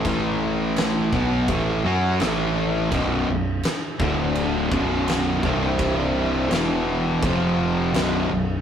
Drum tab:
CC |x-x-x-x-|x-x-x-x-|x-x-x-x-|
SD |--o---o-|--o---o-|--o---o-|
BD |o--oo---|o--o-o-o|o---o---|